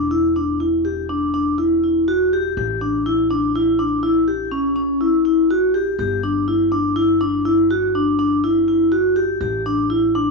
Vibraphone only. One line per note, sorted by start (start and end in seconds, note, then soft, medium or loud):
0.11 0.32 E4 medium
0.36 0.57 D4 medium
0.60 0.81 E4 medium
0.85 1.06 G4 medium
1.09 1.30 D4 medium
1.34 1.55 D4 medium
1.58 1.79 E4 medium
1.84 2.04 E4 medium
2.08 2.28 F#4 medium
2.33 2.53 G4 medium
2.58 2.78 G4 medium
2.81 3.02 D4 medium
3.06 3.26 E4 medium
3.30 3.51 D4 medium
3.55 3.75 E4 medium
3.79 3.99 D4 medium
4.03 4.24 E4 medium
4.28 4.48 G4 medium
4.52 4.72 C#4 medium
4.76 4.97 C#4 medium
5.01 5.21 E4 medium
5.25 5.46 E4 medium
5.50 5.71 F#4 medium
5.74 5.95 G4 medium
5.99 6.20 G4 medium
6.24 6.44 D4 medium
6.48 6.68 E4 medium
6.72 6.93 D4 medium
6.96 7.17 E4 medium
7.21 7.42 D4 medium
7.45 7.66 E4 medium
7.70 7.91 F#4 medium
7.95 8.15 D4 medium
8.19 8.40 D4 medium
8.44 8.64 E4 medium
8.68 8.89 E4 medium
8.92 9.13 F#4 medium
9.16 9.37 G4 medium
9.41 9.62 G4 medium
9.66 9.86 D4 medium
9.90 10.11 E4 medium
10.15 10.31 D4 medium